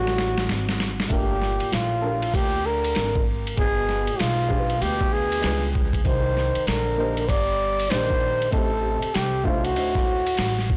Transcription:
Already playing: upright bass A1, trombone A2, flugelhorn F#4
0.07 snare
0.18 snare
0.38 snare
0.49 upright bass G#1, snare
0.69 snare
0.80 snare
1.00 snare
1.09 upright bass G1, trombone A#2, upright piano A3 D4 F4 G4 A#4, flugelhorn G4, kick, ride
1.42 snare
1.60 muted upright bass stroke, ride
1.72 upright bass A#1, trombone A2, flugelhorn F4, snare, hi-hat pedal, ride
2.01 upright piano D4 F4 G4 A4 A#4
2.22 ride
2.34 upright bass D2, trombone A#2, flugelhorn G4, kick, ride
2.65 trombone D3, flugelhorn A#4
2.84 ride
2.95 upright bass G#1, snare, hi-hat pedal, ride
3.15 kick
3.47 ride
3.57 upright bass G1, trombone B2, flugelhorn G#4, kick, ride
3.89 snare
4.07 muted upright bass stroke, ride
4.19 upright bass B1, trombone G#2, flugelhorn F4, snare, hi-hat pedal, ride
4.49 upright piano G#3 D4 F4 G4 G#4, kick
4.58 upright piano B4
4.70 ride
4.80 upright bass D2, trombone B2, flugelhorn G4, ride
5.01 kick
5.11 trombone B2, flugelhorn G#4
5.32 ride
5.42 upright bass C#2, upright piano G3 G#3 D4 F4 B4, snare, hi-hat pedal, ride
5.75 kick
5.93 kick, ride
6.05 upright bass C2, trombone D#3, flugelhorn C5, kick, ride
6.37 snare
6.55 muted upright bass stroke, ride
6.67 upright bass A#1, trombone D3, flugelhorn A#4, snare, hi-hat pedal, ride
6.97 upright piano A#3 D4 D#4 G4 C5
7.17 ride
7.29 upright bass G1, trombone G3, flugelhorn D5, kick, ride
7.80 ride
7.89 upright bass A#1, trombone D#3, upright piano A#3 D4 D#4 G4 D5, flugelhorn C5, snare, hi-hat pedal, ride
8.10 kick
8.42 ride
8.51 upright bass A1, trombone C3, upright piano A3 C4 D#4 G4 C5, flugelhorn A4, kick, ride
9.02 muted upright bass stroke, ride
9.13 upright bass C2, trombone C3, flugelhorn G4, snare, hi-hat pedal, ride
9.44 trombone A2, upright piano A3 D4 D#4 F#4 C5, flugelhorn F4, kick
9.64 trombone A2, flugelhorn F#4, ride
9.74 upright bass D2, upright piano A3 D4 D#4 F#4 C5, ride
9.95 kick, snare
10.26 ride
10.37 upright bass A1, snare, hi-hat pedal, ride
10.59 snare
10.70 kick

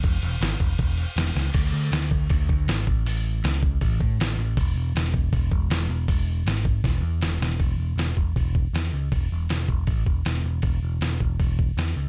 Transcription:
0.03 picked electric bass E1, kick, crash
0.22 picked electric bass E1, crash
0.41 picked electric bass G#1, snare, crash
0.60 picked electric bass E1, kick, crash
0.78 picked electric bass E1, kick, crash
0.97 crash
1.16 picked electric bass E1, snare, crash
1.36 picked electric bass C#2, snare
1.54 picked electric bass D2, kick, open hi-hat, crash
1.73 picked electric bass D2
1.92 picked electric bass D2, snare, open hi-hat
2.11 kick
2.29 picked electric bass D2, kick, open hi-hat
2.49 picked electric bass D2, kick
2.68 picked electric bass G#1, snare, open hi-hat
2.87 picked electric bass A1, kick
3.05 picked electric bass A1, open hi-hat
3.44 picked electric bass C#2, snare, open hi-hat
3.63 kick
3.81 picked electric bass A1, kick, open hi-hat
4.00 picked electric bass A2, kick
4.19 picked electric bass A1, snare, open hi-hat
4.38 picked electric bass A1
4.57 picked electric bass E1, kick, open hi-hat
4.76 picked electric bass E1
4.95 picked electric bass E1, snare, open hi-hat
5.14 kick
5.33 picked electric bass E1, kick, open hi-hat
5.52 picked electric bass E1, kick
5.70 picked electric bass E1, snare, open hi-hat
5.89 picked electric bass E1
6.08 picked electric bass E1, kick, open hi-hat
6.46 picked electric bass G#1, snare, open hi-hat
6.65 kick
6.84 picked electric bass E1, kick, snare, open hi-hat
7.01 picked electric bass E2
7.21 picked electric bass E1, snare, open hi-hat
7.40 picked electric bass E1, snare
7.60 picked electric bass E1, kick, open hi-hat
7.78 picked electric bass E1
7.96 picked electric bass E1, snare, open hi-hat
8.17 picked electric bass E1, kick
8.36 picked electric bass E1, kick, open hi-hat
8.55 kick
8.73 picked electric bass E2, snare, open hi-hat
8.93 picked electric bass C#2
9.12 picked electric bass E1, kick, open hi-hat
9.32 picked electric bass E1
9.49 picked electric bass E1, snare, open hi-hat
9.69 picked electric bass E1, kick
9.87 picked electric bass A1, kick, open hi-hat
10.06 picked electric bass E1, kick
10.25 picked electric bass E1, snare, open hi-hat
10.44 picked electric bass E1
10.62 picked electric bass E1, kick, open hi-hat
10.83 picked electric bass E1
11.01 picked electric bass E1, snare, open hi-hat
11.20 picked electric bass E1, kick
11.40 picked electric bass E1, kick, open hi-hat
11.59 kick
11.77 picked electric bass E2, snare, open hi-hat
11.96 picked electric bass C#2

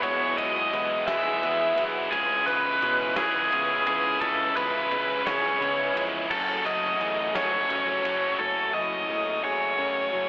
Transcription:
Already playing: clean electric guitar F#3 G#3 B3 G#4, analog synth pad G#4 F#5
0.02 picked electric bass E1, clean electric guitar E2, distorted electric guitar E3 G#3 B3 E4, overdriven electric guitar C#5, kick, ride
0.37 picked electric bass E1, clean electric guitar F#3, distorted electric guitar G#3 B3 E4, overdriven electric guitar D#5, ride
0.72 picked electric bass E1, distorted electric guitar E3 G#3 B3 E4, clean electric guitar G#3, ride
1.07 picked electric bass E1, distorted electric guitar E3 G#3 B3 E4, clean electric guitar G#4, overdriven electric guitar E5, snare, ride
1.42 picked electric bass E2, distorted electric guitar E3 G#3 B3 E4, clean electric guitar B3, ride
1.76 picked electric bass E1, clean electric guitar F#3, distorted electric guitar G#3 B3 E4, ride
2.11 picked electric bass C#2, distorted electric guitar C#3 G#3 C#4 E4, clean electric guitar C#3, overdriven electric guitar G#4, analog synth pad B4 E5 C#6, kick, ride
2.46 picked electric bass C#2, clean electric guitar E3, distorted electric guitar G#3 C#4 E4, overdriven electric guitar B4, ride
2.80 picked electric bass B2, distorted electric guitar C#3 G#3 C#4 E4, ride
3.16 picked electric bass C#2, distorted electric guitar C#3 G#3 C#4 E4, overdriven electric guitar G#4, snare, ride
3.50 picked electric bass C#2, distorted electric guitar C#3 G#3 C#4 E4, clean electric guitar B3, ride
3.85 picked electric bass C#2, clean electric guitar E3, distorted electric guitar G#3 C#4 E4, overdriven electric guitar G#4, ride
4.20 picked electric bass C#2, distorted electric guitar C#3 G#3 C#4 E4, clean electric guitar C#3, overdriven electric guitar A4, analog synth pad B5, kick, ride
4.54 picked electric bass C#2, clean electric guitar E3, distorted electric guitar G#3 C#4 E4, overdriven electric guitar B4, ride
4.90 picked electric bass C#2, distorted electric guitar C#3 G#3 C#4 E4, clean electric guitar G#3, kick, ride
5.25 picked electric bass C#2, distorted electric guitar C#3 G#3 C#4 E4, clean electric guitar G#4, overdriven electric guitar C#5, snare, ride
5.59 distorted electric guitar C#3 G#3 C#4 E4, picked electric bass C#3, clean electric guitar B3, ride
5.94 picked electric bass F2, clean electric guitar E3, distorted electric guitar G#3 C#4 E4, ride
6.29 picked electric bass F#1, distorted electric guitar F#2 C#3 F#3 A3 C#4 F#4, clean electric guitar F#2, overdriven electric guitar A4, analog synth pad F#5 G#5, kick, crash
6.64 picked electric bass F#1, clean electric guitar F#3, distorted electric guitar A3 C#4 F#4, overdriven electric guitar D#5, ride
6.99 picked electric bass E2, distorted electric guitar F#3 A3 C#4 F#4, clean electric guitar A3, ride
7.34 picked electric bass F#1, distorted electric guitar F#2 C#3 F#3 A3 C#4 F#4, overdriven electric guitar C#5, snare, ride
7.68 picked electric bass F#1, distorted electric guitar C#3 F#3 A3 C#4 F#4, clean electric guitar C#4, ride
8.03 picked electric bass F#1, clean electric guitar F#3, distorted electric guitar F#3 A3 C#4 F#4, ride
8.38 picked electric bass F#1, clean electric guitar F#2, distorted electric guitar F#3 A3 C#4 F#4, analog synth pad E4, overdriven electric guitar A4
8.72 picked electric bass F#1, clean electric guitar F#3, distorted electric guitar A3 C#4 F#4, overdriven electric guitar D#5
9.08 picked electric bass F#1, distorted electric guitar F#3 A3 C#4 F#4, clean electric guitar A3
9.42 picked electric bass F#1, distorted electric guitar A3 C#4 F#4, clean electric guitar G#4, overdriven electric guitar C#5
9.76 picked electric bass F#2, distorted electric guitar F#3 A3 C#4 F#4, clean electric guitar C#4
10.11 picked electric bass F#1, clean electric guitar F#3, distorted electric guitar A3 C#4 F#4

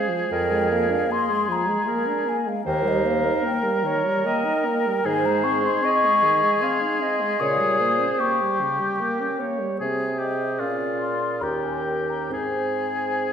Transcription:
Already playing: french horn G#3, oboe G#4, clarinet C5
0.09 french horn F3
0.29 bassoon F2, french horn F3, clarinet A#4, flute G5
0.51 french horn G#3
0.71 french horn A#3, flute F5
0.89 french horn D4
1.07 french horn A#3
1.11 clarinet G#4, flute C6
1.29 french horn G#3
1.48 french horn F3, flute A#5
1.68 french horn G#3
1.87 french horn A#3, clarinet A#4
2.08 french horn D4
2.27 french horn A#3, flute G#5
2.46 french horn G#3, flute F5
2.65 bassoon D#2, french horn D#3, oboe A#4, clarinet C5, flute G5
2.84 french horn G3, flute D#5
3.05 french horn A#3, flute F5
3.24 french horn D#4
3.44 french horn A#3, clarinet A#4, flute G5
3.63 french horn G3
3.83 french horn D#3, clarinet C#5
4.05 french horn G3
4.24 french horn A#3, clarinet D#5, flute G5
4.45 french horn D#4
4.65 french horn A#3, clarinet A#4
4.87 french horn G3
5.04 bassoon G#2, french horn D#3, oboe G#4, clarinet C5, flute G#5
5.26 french horn G#3, flute A#5
5.44 french horn C4, flute C#6
5.63 french horn D#4, flute C6
5.83 french horn C4, clarinet D#5, flute C#6
6.05 french horn G#3
6.24 french horn D#3
6.43 french horn G#3
6.56 flute C#6
6.61 french horn C4, clarinet F5, flute C6
6.81 french horn D#4
7.01 french horn C4, clarinet D#5
7.20 french horn G#3
7.40 bassoon A#2, french horn C#3, clarinet C#5, flute D#6
7.58 french horn G3
7.79 french horn A#3, clarinet C5
8.01 french horn C#4
8.19 french horn A#3, oboe G4, flute C#6
8.41 french horn G3
8.60 french horn C#3
8.79 french horn G3
8.99 french horn A#3, clarinet A#4
9.20 french horn C#4
9.40 french horn A#3, clarinet C#5
9.59 french horn G3
9.79 bassoon C3, french horn C4, clarinet G#4, oboe G#4
10.19 oboe G4, flute D#5
10.59 bassoon A#2, french horn C#4, oboe F4, flute F5
11.00 flute C6
11.41 bassoon D#2, french horn C#4, oboe G4, clarinet A#4, flute A#5
11.64 flute G#5
11.85 flute G5
12.10 flute A#5
12.30 bassoon G#2, french horn C4, oboe G#4, clarinet C5, flute G#5

